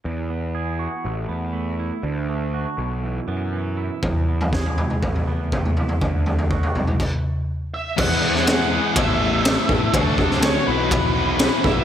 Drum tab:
CC |----------------|----------------|----------------|--------x-------|
RD |----------------|----------------|----------------|----------------|
SD |----------------|----------------|----o-----------|----------------|
T2 |----------------|----------------|------oo-----o--|-------o--------|
FT |----------------|----------------|o--o-oo-oo--o-oo|o-oo-oo---------|
BD |----------------|----------------|o---o---o---o---|o---o---o-------|

CC |x---------------|----------------|
RD |----b---b---b---|b---b---b---b---|
SD |---oo-------o---|---oo-------o---|
T2 |----------------|----------------|
FT |----------------|----------------|
BD |o-------o-----o-|o-o-----o-----o-|